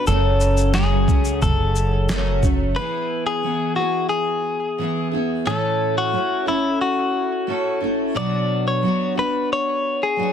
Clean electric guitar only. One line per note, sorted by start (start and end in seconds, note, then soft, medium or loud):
0.07 0.74 A4 medium
0.75 1.42 G#4 medium
1.42 2.39 A4 medium
2.76 3.23 B4 medium
3.27 3.76 G#4 medium
3.76 4.09 F#4 medium
4.09 5.07 G#4 medium
5.47 5.97 A4 medium
5.98 6.48 F#4 medium
6.48 6.81 E4 medium
6.81 7.78 F#4 medium
8.17 8.67 D5 medium
8.68 9.14 C#5 medium
9.19 9.49 B4 medium
9.53 10.03 C#5 medium
10.03 10.33 G#4 medium